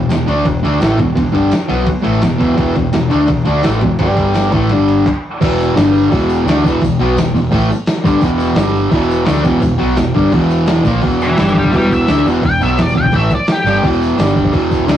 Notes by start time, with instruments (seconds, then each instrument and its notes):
0.08 fingered electric bass E1, distorted electric guitar E2 B2, snare, ride, tambourine
0.27 fingered electric bass D2, distorted electric guitar D3 A3 D4, ride
0.45 fingered electric bass E1, distorted electric guitar E2 B2, kick, ride
0.63 fingered electric bass D2, distorted electric guitar D3 A3 D4, ride
0.80 fingered electric bass A1, distorted electric guitar A2 E3 A3, snare, ride, tambourine
0.98 fingered electric bass E1, distorted electric guitar E2 B2, kick, ride
1.15 fingered electric bass E1, distorted electric guitar E2 B2, kick, ride
1.32 fingered electric bass G1, distorted electric guitar G2 D3 G3, kick, ride
1.51 snare, ride, tambourine
1.68 fingered electric bass B1, distorted electric guitar B2 F#3 B3, snare, ride
1.86 muted distorted electric guitar stroke, muted fingered electric bass stroke, kick, ride
2.02 fingered electric bass A1, distorted electric guitar A2 E3 A3, ride
2.22 fingered electric bass E1, distorted electric guitar E2 B2, snare, ride, tambourine
2.38 fingered electric bass E1, distorted electric guitar E2 B2 E3, kick, ride
2.56 fingered electric bass E1, distorted electric guitar E2 B2 E3, kick, ride
2.75 fingered electric bass E1, distorted electric guitar E2 B2, kick, ride
2.93 fingered electric bass E1, distorted electric guitar E2 B2, snare, ride, tambourine
3.09 fingered electric bass D2, distorted electric guitar D3 A3 D4, snare, ride
3.28 fingered electric bass E1, distorted electric guitar E2 B2, kick, ride
3.45 fingered electric bass D2, distorted electric guitar D3 A3 D4, ride
3.63 fingered electric bass A1, distorted electric guitar A2 E3 A3, snare, ride, tambourine
3.81 fingered electric bass E1, distorted electric guitar E2 B2, kick, ride
3.99 fingered electric bass G1, distorted electric guitar G2 D3 G3, kick, ride
4.17 kick, ride
4.34 snare, ride, tambourine
4.52 fingered electric bass A1, distorted electric guitar A2 E3 A3, kick, ride
4.69 fingered electric bass G1, distorted electric guitar G2 D3 G3, ride
4.88 ride
5.06 kick, clap
5.41 fingered electric bass E1, distorted electric guitar E2 B2 E3, kick, open hi-hat, crash, tambourine
5.59 open hi-hat, tambourine
5.75 fingered electric bass G1, distorted electric guitar G2 D3 G3, snare, open hi-hat, tambourine
5.95 open hi-hat, tambourine
6.11 fingered electric bass E1, distorted electric guitar E2 B2 E3, kick, open hi-hat, tambourine
6.29 open hi-hat, tambourine
6.45 fingered electric bass D2, distorted electric guitar D3 A3 D4, snare, open hi-hat, tambourine
6.57 snare
6.64 fingered electric bass E1, distorted electric guitar E2 B2 E3, kick, open hi-hat, tambourine
6.81 fingered electric bass E1, distorted electric guitar E2 B2, kick, open hi-hat, tambourine
6.99 fingered electric bass B1, distorted electric guitar B2 F#3 B3, open hi-hat
7.15 fingered electric bass E1, distorted electric guitar E2 B2, snare, open hi-hat, tambourine
7.34 fingered electric bass E1, distorted electric guitar E2 B2, open hi-hat, tambourine
7.51 fingered electric bass A1, distorted electric guitar A2 E3 A3, kick, open hi-hat, tambourine
7.69 muted distorted electric guitar stroke, muted fingered electric bass stroke, open hi-hat, tambourine
7.86 snare, open hi-hat, tambourine
7.97 snare
8.04 fingered electric bass G1, distorted electric guitar G2 D3 G3, kick, open hi-hat, tambourine
8.21 fingered electric bass E1, distorted electric guitar E2 B2 E3, kick, open hi-hat, tambourine
8.39 open hi-hat, tambourine
8.55 fingered electric bass G1, distorted electric guitar G2 D3 G3, snare, open hi-hat, tambourine
8.74 open hi-hat, tambourine
8.91 fingered electric bass E1, distorted electric guitar E2 B2 E3, kick, open hi-hat, tambourine
9.09 open hi-hat, tambourine
9.25 fingered electric bass D2, distorted electric guitar D3 A3 D4, snare, open hi-hat, tambourine
9.36 snare
9.44 fingered electric bass E1, distorted electric guitar E2 B2 E3, kick, open hi-hat, tambourine
9.61 fingered electric bass E1, distorted electric guitar E2 B2, kick, open hi-hat, tambourine
9.78 fingered electric bass B1, distorted electric guitar B2 F#3 B3, open hi-hat
9.96 fingered electric bass E1, distorted electric guitar E2 B2, snare, open hi-hat, tambourine
10.14 fingered electric bass G1, distorted electric guitar G2 D3 G3, kick, open hi-hat
10.32 fingered electric bass E1, distorted electric guitar E2 B2 E3, kick, open hi-hat
10.49 open hi-hat, tambourine
10.67 snare, open hi-hat, tambourine
10.77 snare
10.85 fingered electric bass A#1, distorted electric guitar A#2 F3 A#3, kick, open hi-hat, tambourine
11.02 fingered electric bass E1, distorted electric guitar E2 B2 E3, kick, open hi-hat
11.13 tambourine
11.20 lead electric guitar B4 E5, open hi-hat, tambourine
11.32 tambourine
11.37 fingered electric bass G1, distorted electric guitar G2 D3 G3, lead electric guitar B4 E5, snare, open hi-hat, tambourine
11.49 tambourine
11.54 kick, open hi-hat
11.59 lead electric guitar D5 G5
11.64 kick
11.71 fingered electric bass E1, distorted electric guitar E2 B2 E3, kick, open hi-hat, tambourine
11.76 lead electric guitar D5 G5
11.90 lead electric guitar E5, kick, open hi-hat, tambourine
12.07 fingered electric bass D2, distorted electric guitar D3 A3 D4, snare, open hi-hat, tambourine
12.17 snare
12.25 fingered electric bass E1, distorted electric guitar E2 B2 E3, open hi-hat, tambourine
12.36 tambourine
12.43 fingered electric bass E1, distorted electric guitar E2 B2, lead electric guitar G5, kick, open hi-hat
12.54 tambourine
12.60 fingered electric bass B1, distorted electric guitar B2 F#3 B3, lead electric guitar E5, open hi-hat, tambourine
12.70 tambourine
12.77 fingered electric bass E1, distorted electric guitar E2 B2, snare, open hi-hat, tambourine
12.82 lead electric guitar D5
12.89 tambourine
12.95 fingered electric bass E1, distorted electric guitar E2 B2, lead electric guitar G5, kick, open hi-hat
13.04 kick
13.12 fingered electric bass A1, distorted electric guitar A2 E3 A3, kick, open hi-hat, tambourine
13.16 lead electric guitar E5
13.30 muted fingered electric bass stroke, muted distorted electric guitar stroke, kick, open hi-hat, tambourine
13.35 lead electric guitar D5
13.47 snare, open hi-hat, tambourine
13.52 lead electric guitar G4
13.58 snare, tambourine
13.64 fingered electric bass G1, distorted electric guitar G2 D3 G3, open hi-hat, tambourine
13.82 fingered electric bass E1, distorted electric guitar E2 B2 E3, kick, open hi-hat
13.93 tambourine
14.01 open hi-hat, tambourine
14.17 fingered electric bass G1, distorted electric guitar G2 D3 G3, snare, open hi-hat, tambourine
14.27 tambourine
14.36 kick, open hi-hat
14.45 kick
14.53 fingered electric bass E1, distorted electric guitar E2 B2 E3, kick, open hi-hat, tambourine
14.71 kick, open hi-hat, tambourine
14.87 fingered electric bass D2, distorted electric guitar D3 A3 D4, snare, open hi-hat, tambourine